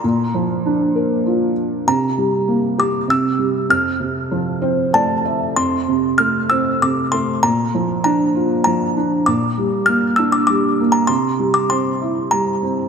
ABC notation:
X:1
M:3/4
L:1/16
Q:1/4=98
K:F
V:1 name="Music box"
b6 z6 | b6 d'2 e'4 | f'8 a4 | c'4 f'2 e'2 d'2 c'2 |
b4 b4 b4 | d'4 f'2 e' d' d'3 b | c'3 d' c'4 b4 |]
V:2 name="Felt piano"
z12 | z12 | z6 c2 d2 e2 | z12 |
z12 | z12 | z12 |]
V:3 name="Felt piano" clef=bass
B,,2 F,2 D2 B2 F4 | C,2 G,2 B,2 G2 C,2 G,2 | F,,2 C,2 F,2 C2 A,4 | F,,2 C,2 A,2 C2 C,2 A,2 |
B,,2 F,2 D2 F2 F,2 D2 | B,,2 G,2 B,2 D2 G,2 B,2 | C,2 G,2 C2 E2 G,2 C2 |]